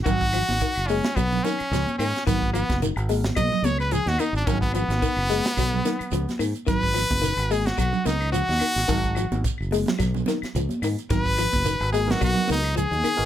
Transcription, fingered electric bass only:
X:1
M:4/4
L:1/16
Q:"Swing 16ths" 1/4=109
K:G#dor
V:1 name="Fingered electric bass" clef=bass
G,,,3 G,,, z F,,,2 z B,,,2 z2 C,, z G,, z | G,,,3 F,,,2 G,,,3 B,,, z C,,3 D,, z G,,, | G,,,3 G,,, z F,,,2 z B,,,2 z2 C,, z G,, z | G,,,3 F,,,2 G,,,3 B,,, z C,,3 D,, z G,,, |
G,,,3 G,,, z F,,,2 z B,,,2 z2 C,, z G,, z | G,,,3 F,,,2 G,,,3 B,,, z C,,3 D,, z G,,, |]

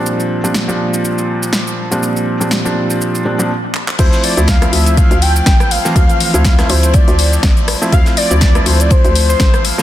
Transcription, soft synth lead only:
X:1
M:4/4
L:1/16
Q:"Swing 16ths" 1/4=122
K:Dm
V:1 name="Soft synth lead"
z16 | z16 | c2 d2 f2 e2 f2 g2 g2 f2- | f6 c2 d6 z2 |
f2 d4 c d c3 c3 f2 |]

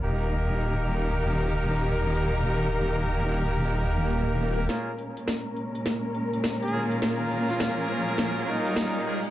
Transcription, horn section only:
X:1
M:4/4
L:1/8
Q:"Swing 16ths" 1/4=103
K:Bbdor
V:1 name="Horn section"
[B,EGB]8- | [B,EGB]8 | [B,DFAB] z6 [B,DFAB] | [B,DFAB]6- [B,DFAB] [B,DFAB] |]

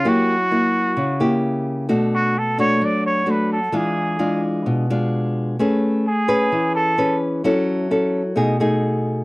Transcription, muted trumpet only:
X:1
M:4/4
L:1/8
Q:1/4=130
K:F#m
V:1 name="Muted trumpet"
F6 z2 | z F A c d c B A | G3 z4 z | z2 G3 A2 z |
z8 |]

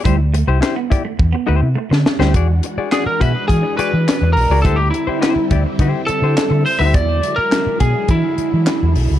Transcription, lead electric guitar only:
X:1
M:4/4
L:1/16
Q:1/4=104
K:Emix
V:1 name="Lead electric guitar"
z16 | z4 G ^A B2 G2 B4 A2 | A =G E4 z4 A4 =c e | d3 ^A3 G2 E6 z2 |]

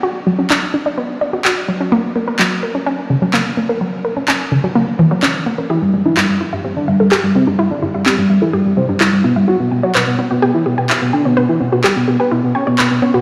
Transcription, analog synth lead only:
X:1
M:4/4
L:1/16
Q:1/4=127
K:F#phr
V:1 name="Analog synth lead"
z16 | z16 | z16 | E G, G, E G, G, z G, G, D G, G, z G, =C G, |
G, D G, G, G G, G, E G, G, =C G, G, G, B, G, | F B, B, F B, B, z B, B, E B, B, z B, D B, | B, E B, B, G B, B, B B, B, c B, B, B, c B, |]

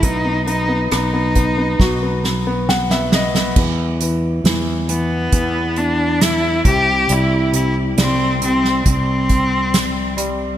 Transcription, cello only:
X:1
M:4/4
L:1/8
Q:1/4=68
K:Bphr
V:1 name="Cello"
^D D D3 z3 | [K:Em] z3 B,2 D E G | E E C C C3 z |]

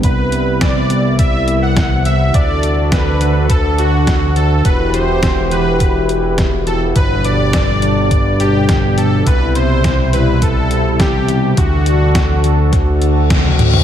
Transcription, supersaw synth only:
X:1
M:4/4
L:1/16
Q:1/4=104
K:Clyd
V:1 name="Supersaw synth"
B4 d4 e3 f3 e2 | d4 B4 A2 F4 A2 | B2 c4 B6 z2 A2 | B2 d8 G4 A2 |
B2 c4 B2 A4 G4 | F12 z4 |]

